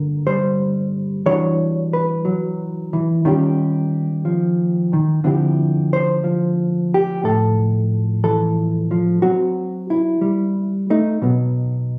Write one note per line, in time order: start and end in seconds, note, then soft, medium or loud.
0.00 1.25 G2 medium
0.00 1.22 D3 medium
0.00 0.26 G3 medium
0.00 1.26 A#3 soft
0.00 1.22 F4 soft
0.00 0.26 A#4 medium
0.27 1.26 G3 soft
0.27 1.26 C5 medium
1.26 2.92 E3 medium
1.26 2.24 G3 soft
1.26 3.22 D4 soft
1.26 3.22 F#4 soft
1.26 1.93 C#5 loud
1.93 3.25 B4 medium
2.25 2.93 F#3 medium
2.93 3.25 E3 medium
3.25 4.92 D#3 medium
3.25 4.25 G3 medium
3.25 5.21 C#4 medium
3.25 5.21 F4 medium
3.25 5.25 G4 medium
4.25 4.92 F3 medium
4.93 5.24 D#3 medium
5.24 8.23 D3 medium
5.24 6.23 F3 soft
5.24 9.19 C4 soft
5.24 9.19 E4 soft
5.24 5.92 G4 soft
5.93 6.93 C5 loud
6.24 8.90 F3 medium
6.94 7.25 G4 medium
7.23 9.19 A2 medium
7.23 8.23 A4 medium
8.24 8.91 E3 medium
8.24 9.23 A4 medium
8.91 9.22 F3 medium
9.22 10.21 F#3 medium
9.22 11.18 C4 soft
9.22 9.90 F#4 medium
9.90 10.90 E4 medium
10.21 10.89 G3 soft
10.90 11.22 A3 medium
10.90 11.99 D#4 medium
11.22 11.99 B2 medium
11.22 11.99 F#3 soft
11.22 11.99 B3 soft